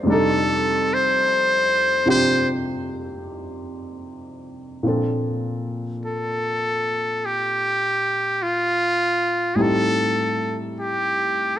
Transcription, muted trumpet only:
0.11 A4
0.94 C5
2.10 C5
6.06 A4
7.25 G4
8.43 F4
9.56 G#4
9.62 A4
10.79 G4

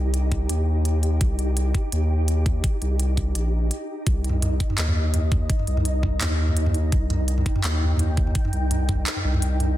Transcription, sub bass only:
Already playing: C2
0.49 D#2
1.21 C2
1.92 D#2
2.82 C2
3.35 A#1
4.07 C2
4.78 D#2
5.67 C2
6.21 D#2
6.92 C2
7.64 D#2
8.53 C2
9.24 C2

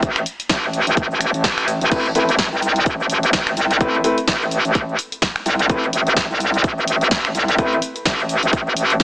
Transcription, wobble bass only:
0.03 A1
0.50 A1
0.87 A1
1.34 A1
1.81 A1
1.92 A1
2.15 A1
2.52 C2
2.86 A1
3.33 A1
3.57 C2
3.81 A1
4.28 A1
4.65 A1
5.46 C2
5.70 A1
5.93 A1
6.30 C2
6.64 A1
7.11 A1
7.35 C2
7.58 A1
8.06 A1
8.43 A1
8.53 A1
8.77 A1

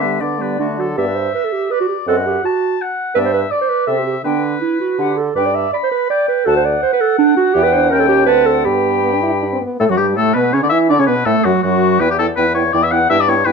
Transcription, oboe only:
0.01 B4
0.21 D5
0.41 B4
0.60 F#4
0.80 A4
0.98 E5
1.72 D5
2.08 F#5
2.45 A5
2.82 F#5
3.15 E5
3.51 D5
3.87 E5
4.24 B4
5.35 D5
5.74 B5
6.10 G5
6.47 F#5
7.92 G5
8.28 A5
8.65 B5
9.80 A4
9.91 F#4
9.97 G4
10.17 A4
10.34 B4
10.53 C#5
10.63 D5
10.69 E5
10.89 D5
10.99 C#5
11.07 B4
11.26 A4
11.44 F#4
11.63 F#4
12.00 B4
12.10 G4
12.19 A4
12.36 B4
12.55 C#5
12.73 D5
12.83 E5
12.91 F#5
13.10 E5
13.20 D5
13.28 C#5
13.45 B4

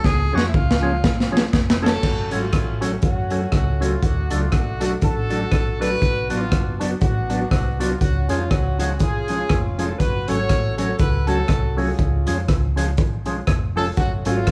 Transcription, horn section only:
1.83 C#4 F#4 A4
2.32 A3 C#4 F4
3.04 A3 C#4 F#4
3.53 F#4
3.82 F4
4.03 A3 D4 F#4
4.32 F4
4.53 F#4
4.82 F#4
5.03 D4 F#4 A4
5.82 D4 F#4 B4
6.31 B3 D4 F4
7.02 B3 D4 F#4
7.50 F#4
7.79 F4
8.01 C#4 F#4
8.29 F4
8.50 F#4
8.79 F#4
9.00 C#4 F4 G#4
9.78 A4
9.99 F#4 B4
10.28 F#4 A4 C#5
10.77 C#5
10.99 F#4 B4
11.28 C#4 F#4 A4
11.78 C#4 F4 G#4
13.77 A4
13.98 A3 C#4 F#4
14.26 A3 C#4 F4

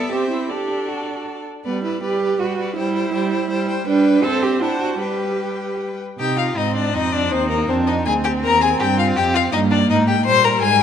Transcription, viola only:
Already playing: B3
0.13 C4
0.50 D4
1.65 G3
2.03 G3
2.40 G3
2.77 G3
3.13 G3
3.50 G3
3.87 G3
4.24 C4
4.62 D4
5.01 G3
6.19 D#4
6.58 C4
6.94 C4
7.32 D#4
7.69 D4
8.06 C4
9.53 A#3
10.27 G3

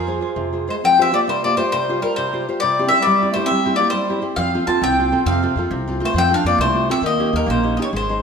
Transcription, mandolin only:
Already playing: G#4
0.70 C5
0.85 G5
1.02 E5
1.14 D5
1.29 C5
1.44 D5
1.57 C5
1.72 C5
2.02 A#4
2.16 C5
2.60 D5
2.89 E5
3.02 D5
3.34 C5
3.46 E5
3.76 D5
3.90 C5
4.36 F5
4.67 A5
4.84 G5
5.26 F5
6.05 C5
6.18 G5
6.34 F5
6.46 D5
6.61 C5
6.91 E5
7.06 D#5
7.36 A#4
7.50 C5
7.77 D#5
7.82 C#5
7.96 C5

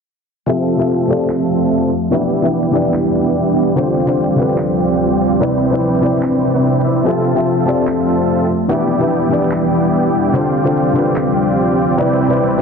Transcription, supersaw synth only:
0.47 C4 F4 A4 E5 A5
1.09 C4 F4 A4 E5 A5
2.12 B3 E4 G4 D5 G5
2.73 B3 E4 G4 D5 G5
3.76 C4 F4 G4 D5 G5
4.38 C4 F4 G4 D5 G5
5.40 C4 E4 B4 D5 G5
6.02 C4 E4 B4 D5 G5
6.54 C4 E4 B4 D5 G5
6.84 C4 E4 B4 D5 E5
7.05 C4 F4 A4 E5 A5
7.66 C4 F4 A4 E5 A5
8.69 B3 E4 G4 D5 G5
9.31 B3 E4 G4 D5 G5
10.33 C4 F4 G4 D5 G5
10.95 C4 F4 G4 D5 G5
11.98 C4 E4 B4 D5 G5

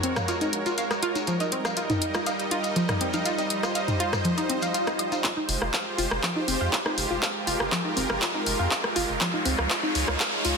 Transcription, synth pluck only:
0.03 C4
0.16 F5
0.28 F4
0.41 D#4
0.66 F4
0.78 F5
1.03 F4
1.27 F3
1.40 D#4
1.52 C4
1.65 F5
1.77 F4
1.90 D#4
2.15 F4
2.27 F5
2.51 F4
2.76 F3
2.89 D#4
3.01 C4
3.14 F5
3.26 F4
3.39 D#4
3.63 F4
3.75 F5
4.00 F4
4.25 F3
4.38 D#4
4.50 C4
4.62 F5
4.74 F4
4.87 D#4
5.12 F4
5.24 F4
5.37 D#4
5.62 F4
5.74 F5
5.98 F4
6.23 F3
6.36 D#4
6.48 C4
6.61 F5
6.73 F4
6.86 D#4
7.11 F4
7.22 F5
7.47 F4
7.72 F3
7.85 D#4
7.97 C4
8.10 F5
8.22 F4
8.35 D#4
8.59 F4
8.71 F5
8.96 F4
9.21 F3
9.34 D#4
9.46 C4
9.59 F5
9.70 F4
9.83 D#4
10.08 F4
10.20 F5
10.45 F4

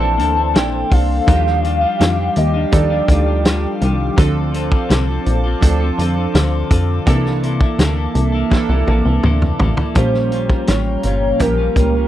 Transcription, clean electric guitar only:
0.00 D4 E4 A4
0.18 A#3 D4 E4 A4
0.36 D4 E4 A4
0.54 A#3 D4 E4 A4
0.90 A#3 D4 A4
1.27 D#3 G3 D4 F4
1.62 D#3 G3 D4 F4
1.81 D4 F4
1.85 G3
1.99 D#3 G3 D4 F4
2.17 D4 F4
2.21 G3
2.54 G3 D4 F4
2.90 G3 D4 F4
3.08 D#3 G3 D4 F4
3.26 G3 D4 F4
3.45 G3 D4 F4
3.81 D#3 G3 D4 F4
4.17 D3 C4 F4 A4
4.53 D3 C4 F4 A4
4.71 C4 F4 A4
4.89 D3 C4 F4 A4
5.08 F4 A4
5.12 C4
5.44 C4 F4 A4
5.80 F4 A4
5.84 C4
5.98 D3 C4 F4 A4
6.16 F4 A4
6.20 C4
6.34 D3 C4 F4 A4
6.70 D3 C4 F4 A4
7.06 C3 A#3 E4 A4
7.42 C3 A#3 E4
7.47 A4
7.61 A#3 E4 A4
7.78 C3 A#3 E4 A4
7.97 A#3 E4 A4
8.32 E4 A4
8.36 A#3
8.69 A#3 E4 A4
8.87 C3 A#3 E4 A4
9.05 A#3 E4 A4
9.23 C3 A#3 E4 A4
9.59 C3 A#3 E4
9.63 A4
9.77 E4 A4
9.81 A#3
9.95 A#2 G3 C#4 F4
10.31 A#2 G3 C#4 F4
10.49 C#4 F4
10.53 G3
10.68 G3 C#4 F4
11.03 A#2 G3 C#4
11.07 F4
11.58 G3 C#4 F4
11.76 A#2 G3 C#4
11.80 F4
11.94 C#4 F4
11.99 G3

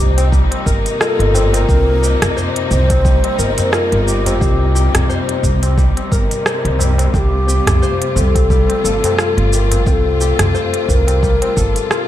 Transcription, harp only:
Already playing: G3 C4 F4 G4 C5
0.32 G3
0.66 A#4
1.00 F4
1.34 G4
1.69 C4
2.03 G4
2.36 C5
2.71 G4
3.05 G3
3.38 A#4
3.73 F4
4.07 G4
4.41 C4
4.75 G4
5.09 C5
5.44 G4
5.78 G3
6.12 A#4
6.46 C5
6.80 G3
7.14 C4
7.48 G4
7.82 C5
8.16 G4
8.50 G3
8.84 A4
9.18 F4
9.53 G4
9.86 C4
10.21 G4
10.55 C5
10.88 G4
11.22 G3
11.57 A4
11.91 F4

